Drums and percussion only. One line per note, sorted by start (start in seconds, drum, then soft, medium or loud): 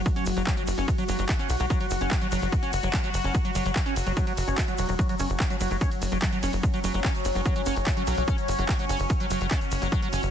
0.06 kick loud
0.06 closed hi-hat medium
0.06 shaker soft
0.16 closed hi-hat medium
0.16 shaker soft
0.25 open hi-hat loud
0.25 ride medium
0.25 shaker medium
0.37 closed hi-hat medium
0.37 shaker soft
0.47 kick loud
0.47 clap loud
0.47 closed hi-hat medium
0.47 shaker soft
0.57 closed hi-hat medium
0.57 shaker soft
0.67 open hi-hat medium
0.67 ride medium
0.67 shaker medium
0.78 closed hi-hat medium
0.78 shaker soft
0.88 kick loud
0.88 closed hi-hat medium
0.88 shaker soft
0.98 closed hi-hat medium
0.98 shaker soft
1.09 open hi-hat loud
1.09 ride medium
1.09 shaker medium
1.19 closed hi-hat medium
1.19 shaker soft
1.29 kick loud
1.29 clap loud
1.29 closed hi-hat medium
1.29 shaker soft
1.39 closed hi-hat medium
1.39 shaker soft
1.49 open hi-hat medium
1.49 ride medium
1.49 shaker medium
1.60 closed hi-hat medium
1.60 shaker soft
1.70 kick loud
1.70 closed hi-hat loud
1.70 shaker soft
1.80 closed hi-hat medium
1.80 shaker soft
1.90 open hi-hat loud
1.90 ride medium
1.90 shaker loud
2.00 closed hi-hat medium
2.00 shaker soft
2.11 kick loud
2.11 clap loud
2.11 closed hi-hat medium
2.11 shaker medium
2.21 closed hi-hat medium
2.21 shaker soft
2.32 open hi-hat medium
2.32 ride medium
2.32 shaker medium
2.42 closed hi-hat medium
2.42 shaker soft
2.52 kick loud
2.52 closed hi-hat loud
2.52 shaker medium
2.63 closed hi-hat medium
2.63 shaker soft
2.73 open hi-hat loud
2.73 ride medium
2.73 shaker medium
2.83 closed hi-hat medium
2.83 shaker soft
2.93 kick loud
2.93 clap loud
2.93 closed hi-hat loud
2.93 shaker soft
3.04 closed hi-hat medium
3.04 shaker soft
3.14 open hi-hat medium
3.14 ride medium
3.14 shaker medium
3.24 closed hi-hat medium
3.24 shaker soft
3.34 kick loud
3.34 closed hi-hat loud
3.34 shaker soft
3.45 closed hi-hat medium
3.45 shaker soft
3.55 open hi-hat loud
3.55 ride medium
3.55 shaker medium
3.65 closed hi-hat medium
3.65 shaker soft
3.76 kick loud
3.76 clap loud
3.76 closed hi-hat loud
3.76 shaker medium
3.86 closed hi-hat medium
3.86 shaker soft
3.96 open hi-hat medium
3.96 ride medium
3.96 shaker medium
4.06 closed hi-hat medium
4.06 shaker soft
4.17 kick loud
4.17 closed hi-hat loud
4.17 shaker medium
4.27 closed hi-hat medium
4.27 shaker soft
4.37 open hi-hat loud
4.37 ride medium
4.37 shaker medium
4.48 closed hi-hat medium
4.48 shaker soft
4.58 kick loud
4.58 clap loud
4.58 closed hi-hat medium
4.58 shaker medium
4.68 closed hi-hat medium
4.68 shaker soft
4.78 open hi-hat medium
4.78 ride medium
4.78 shaker medium
4.88 closed hi-hat medium
4.88 shaker soft
4.99 kick loud
4.99 closed hi-hat loud
4.99 shaker medium
5.09 closed hi-hat medium
5.09 shaker soft
5.19 open hi-hat loud
5.19 ride medium
5.19 shaker medium
5.30 closed hi-hat medium
5.30 shaker soft
5.40 kick loud
5.40 clap loud
5.40 closed hi-hat loud
5.40 shaker medium
5.50 closed hi-hat medium
5.50 shaker soft
5.60 open hi-hat medium
5.60 ride medium
5.60 shaker medium
5.71 closed hi-hat medium
5.71 shaker soft
5.81 kick loud
5.81 closed hi-hat loud
5.81 shaker medium
5.91 closed hi-hat medium
5.91 shaker soft
6.02 open hi-hat loud
6.02 ride medium
6.02 shaker loud
6.12 closed hi-hat medium
6.12 shaker soft
6.22 kick loud
6.22 clap loud
6.22 closed hi-hat loud
6.22 shaker medium
6.33 closed hi-hat medium
6.33 shaker soft
6.43 open hi-hat medium
6.43 ride medium
6.43 shaker medium
6.53 closed hi-hat medium
6.53 shaker soft
6.63 kick loud
6.63 closed hi-hat loud
6.63 shaker medium
6.74 closed hi-hat medium
6.74 shaker soft
6.84 open hi-hat loud
6.84 ride medium
6.84 shaker medium
6.94 closed hi-hat medium
6.94 shaker soft
7.04 kick loud
7.04 clap loud
7.04 closed hi-hat medium
7.04 shaker medium
7.15 closed hi-hat medium
7.15 shaker soft
7.25 open hi-hat loud
7.25 ride medium
7.25 shaker loud
7.35 closed hi-hat medium
7.35 shaker soft
7.45 kick loud
7.45 closed hi-hat loud
7.45 shaker medium
7.56 closed hi-hat medium
7.56 shaker soft
7.66 open hi-hat loud
7.66 ride medium
7.66 shaker loud
7.76 closed hi-hat medium
7.76 shaker soft
7.87 kick loud
7.87 clap loud
7.87 closed hi-hat medium
7.87 shaker medium
7.97 closed hi-hat medium
7.97 shaker soft
8.07 open hi-hat loud
8.07 ride medium
8.07 shaker medium
8.17 closed hi-hat medium
8.17 shaker soft
8.28 kick loud
8.28 closed hi-hat medium
8.28 shaker medium
8.38 closed hi-hat medium
8.38 shaker soft
8.48 open hi-hat loud
8.48 ride medium
8.48 shaker loud
8.59 closed hi-hat medium
8.59 shaker soft
8.69 kick loud
8.69 clap loud
8.69 closed hi-hat loud
8.69 shaker medium
8.79 closed hi-hat medium
8.79 shaker soft
8.89 open hi-hat loud
8.89 ride medium
8.89 shaker loud
8.99 closed hi-hat medium
8.99 shaker soft
9.10 kick loud
9.10 closed hi-hat medium
9.10 shaker medium
9.20 closed hi-hat medium
9.20 shaker soft
9.30 open hi-hat loud
9.30 ride medium
9.30 shaker loud
9.40 closed hi-hat medium
9.40 shaker soft
9.51 kick loud
9.51 clap loud
9.51 closed hi-hat medium
9.51 shaker medium
9.61 closed hi-hat medium
9.61 shaker soft
9.71 open hi-hat loud
9.71 ride medium
9.71 shaker medium
9.82 closed hi-hat medium
9.82 shaker soft
9.92 kick loud
9.92 closed hi-hat medium
9.92 shaker soft
10.02 closed hi-hat medium
10.02 shaker soft
10.13 open hi-hat loud
10.13 ride medium
10.13 shaker medium
10.23 closed hi-hat medium
10.23 shaker soft